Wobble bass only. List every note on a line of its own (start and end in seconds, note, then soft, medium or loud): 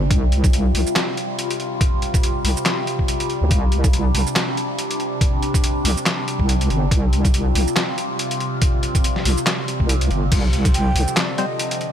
0.11 0.73 C2 loud
0.74 0.85 C2 medium
2.44 2.56 C2 medium
3.41 3.50 D2 medium
3.51 4.14 C2 loud
4.15 4.26 C2 medium
5.85 5.96 C2 medium
6.39 6.69 C2 medium
6.70 6.90 G1 loud
6.91 7.54 C2 loud
7.55 7.66 C2 medium
9.25 9.36 C2 medium
9.80 10.09 C2 medium
10.10 10.30 G1 loud
10.32 10.94 C2 loud
10.95 11.06 C2 medium